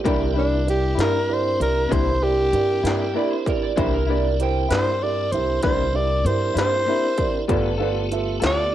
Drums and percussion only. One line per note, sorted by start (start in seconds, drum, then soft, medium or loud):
0.05 kick medium
0.05 closed hi-hat medium
0.68 closed hi-hat medium
0.99 snare medium
0.99 closed hi-hat medium
1.61 closed hi-hat soft
1.92 kick medium
1.92 closed hi-hat medium
2.53 closed hi-hat soft
2.85 snare medium
2.85 closed hi-hat medium
3.46 kick medium
3.46 closed hi-hat medium
3.77 kick medium
3.77 closed hi-hat medium
4.40 closed hi-hat soft
4.71 snare loud
4.71 closed hi-hat medium
5.32 closed hi-hat medium
5.63 kick medium
5.63 closed hi-hat medium
6.26 closed hi-hat medium
6.57 snare medium
6.57 closed hi-hat medium
7.18 kick medium
7.18 closed hi-hat medium
7.49 kick medium
7.49 closed hi-hat medium
8.12 closed hi-hat soft
8.42 snare loud
8.42 closed hi-hat medium